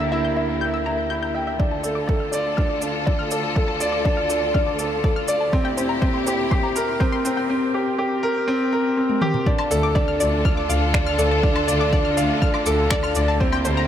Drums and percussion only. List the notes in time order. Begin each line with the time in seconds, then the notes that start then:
1.60 kick
1.84 shaker
2.09 kick
2.33 shaker
2.58 kick
2.82 shaker
3.07 kick
3.31 shaker
3.56 kick
3.80 shaker
4.05 kick
4.30 shaker
4.55 kick
4.79 shaker
5.04 kick
5.28 shaker
5.53 kick
5.78 shaker
6.02 kick
6.27 shaker
6.51 kick
6.76 shaker
7.01 kick
7.25 shaker
9.10 high tom
9.21 mid tom
9.34 mid tom
9.47 kick
9.59 low woodblock
9.71 shaker
9.96 kick
10.20 shaker
10.45 kick
10.70 shaker
10.94 finger snap, kick
11.19 shaker
11.43 kick
11.56 low woodblock
11.68 shaker
11.93 kick
12.17 shaker
12.42 kick
12.54 low woodblock
12.66 shaker
12.91 finger snap, kick
13.03 low woodblock
13.15 shaker
13.41 kick
13.52 low woodblock
13.65 shaker